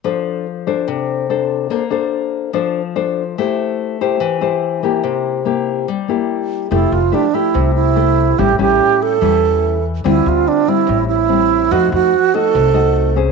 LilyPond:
<<
  \new Staff \with { instrumentName = "Alto flute" } { \time 4/4 \key f \major \tempo 4 = 144 r1 | r1 | r1 | r1 |
e'8 f'8 d'8 e'4 e'4. | g'8 g'4 a'2 r8 | e'8 f'8 d'8 e'4 e'4. | ges'8 ges'4 a'2 r8 | }
  \new Staff \with { instrumentName = "Nylon-string guitar" } { \time 4/4 \key f \major << { <d' a' c''>4 r8 <d' a' c''>4. <d' a' c''>4 | <d' a' c''>8 <d' a' c''>4. <d' a' c''>8 r8 <d' a' c''>8 r8 | <e' g' c''>4. <e' g' c''>4 <e' g' c''>4 <bes e' g'>8~ | <bes e' g'>4 <bes e' g'>4 r8 <bes e' g'>4. |
<a e' g'>8 r8 <a e' g'>8 <a e' g'>4. <a e' g'>8 r8 | <g cis' e'>8 <g cis' e'>4. <g cis' e'>4. r8 | <g c' f'>4. <g c'>4. <g c'>4 | <a ees' ges'>4 r8 <a ees' ges'>4 <a ees' ges'>4 <des' aes' c''>8 | } \\ { f2 c2 | bes2 f2 | a2 e2 | c2 g2 |
f2 c2 | a,2 e2 | d2 a,2 | f2 c2 | } >> }
  \new Staff \with { instrumentName = "Upright bass" } { \clef bass \time 4/4 \key f \major r1 | r1 | r1 | r1 |
f,,8 f,,8 r4 c,2 | a,,8 a,,8 r4 e,2 | d,8 d,8 r4 a,,2 | f,8 f,8 r4 c,2 | }
>>